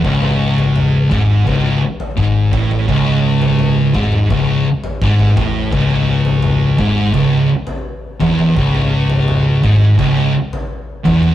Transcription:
<<
  \new Staff \with { instrumentName = "Distorted electric guitar" } { \clef bass \time 4/4 \key cis \minor \tempo 4 = 84 cis,4. gis,8 cis,8 r8 gis,8 a,8 | cis,4. gis,8 cis,8 r8 gis,8 a,8 | cis,4. gis,8 cis,8 r4 e,8 | cis,4. gis,8 cis,8 r4 e,8 | }
  \new Staff \with { instrumentName = "Distorted electric guitar" } { \clef bass \time 4/4 \key cis \minor cis,4. gis,8 cis,8 r8 gis,8 a,8 | cis,4. gis,8 cis,8 r8 gis,8 a,8 | cis,4. gis,8 cis,8 r4 e,8 | cis,4. gis,8 cis,8 r4 e,8 | }
  \new Staff \with { instrumentName = "Picked electric bass" } { \clef bass \time 4/4 \key cis \minor cis,,4. gis,,8 cis,,8 r8 gis,,8 a,,8 | cis,,4. gis,,8 cis,,8 r8 gis,,8 a,,8 | cis,,4. gis,,8 cis,,8 r4 e,,8 | cis,,4. gis,,8 cis,,8 r4 e,,8 | }
  \new DrumStaff \with { instrumentName = "Drums" } \drummode { \time 4/4 <bd tomfh>16 tomfh8 tomfh16 <tomfh toml>8 <bd toml>8 <bd tomfh>8. tomfh16 bd8 <bd tomfh>16 tomfh16 | <bd tomfh>8. tomfh16 tomfh8 <bd toml>16 toml16 <bd tomfh>8. tomfh16 bd16 tomfh16 <bd tomfh toml>8 | <bd tomfh>16 tomfh8 tomfh16 <tomfh toml>8 <bd toml>8 <bd tomfh>8. tomfh16 r8 <bd tomfh>16 tomfh16 | <bd tomfh>16 tomfh8 tomfh16 <tomfh toml>8 <bd toml>8 <bd tomfh>8. tomfh16 r8 <bd tomfh>16 tomfh16 | }
>>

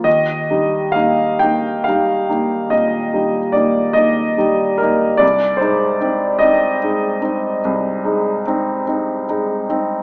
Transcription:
\new Staff \with { instrumentName = "Grand piano" } { \time 12/8 \key aes \lydian \tempo 4. = 49 << { ees''4 f''8 g''8 f''4 ees''4 d''8 ees''4 bes'8 | d''8 c''4 ees''1~ ees''8 | } \\ { ees,8 <g ees'>8 <bes ees'>8 <bes ees'>8 <g ees'>8 <bes ees'>8 bes,8 <g ees'>8 <bes ees'>8 <bes ees'>8 <g ees'>8 <bes ees'>8 | c,8 <aes ees'>8 <c' ees'>8 <c' ees'>8 <aes ees'>8 <c' ees'>8 c,8 <aes ees'>8 <c' ees'>8 <c' ees'>8 <aes ees'>8 <c' ees'>8 | } >> }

